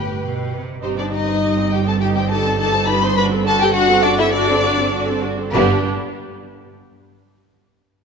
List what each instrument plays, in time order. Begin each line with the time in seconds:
Already playing: double bass section G1, cello section A2, violin section G4 B4 G5, viola section B4
0.23 cello section B2
0.54 cello section C3
0.82 double bass section G1, cello section G2, violin section C4 C5, viola section D#4 G4
0.97 viola section C4 D#4, violin section D4 D5
1.12 viola section D#4 G4, violin section D#4 D#5
1.28 viola section C4 D#4
1.42 viola section D#4 G4
1.57 viola section C4 D#4
1.71 viola section D#4 G4, violin section G4 G5
1.86 viola section C4 D#4, violin section A4 A5
2.00 viola section D#4 G4, violin section G4 G5
2.14 viola section C4 D#4, violin section G4 G5
2.28 viola section D#4 G4, violin section A4 A5
2.45 viola section C4 D#4
2.59 viola section D#4 G4, violin section A4 A5
2.73 viola section C4 D#4
2.87 viola section D#4 G4, violin section B4 B5
3.03 viola section C4 D#4, violin section C5 C6
3.16 viola section D4 F#4, violin section B4 B5
3.32 viola section C4 A4
3.45 viola section D4 F#4, violin section A4 A5
3.61 viola section C4 A4, violin section G4 G5
3.74 viola section D4 F#4, violin section F#4 F#5
3.90 viola section C4 A4
4.03 violin section D4 D5, viola section D4 F#4
4.18 viola section C4 A4, violin section E4 E5
4.32 violin section D4 D5, viola section D4 F#4
4.49 viola section C4 A4
4.64 viola section D4 F#4
4.79 viola section C4 A4
4.94 viola section D4 F#4
5.08 viola section C4 A4
5.24 viola section D4 F#4
5.39 viola section C4 A4
5.53 double bass section G1, cello section G2, violin section B3 B4, viola section D4 G4